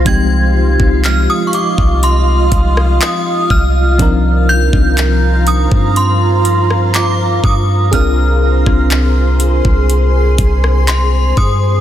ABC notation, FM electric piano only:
X:1
M:4/4
L:1/8
Q:1/4=61
K:Cm
V:1 name="FM electric piano"
[F,A,CEG]8 | [F,CDEB]8 | [CDFAB]8 |]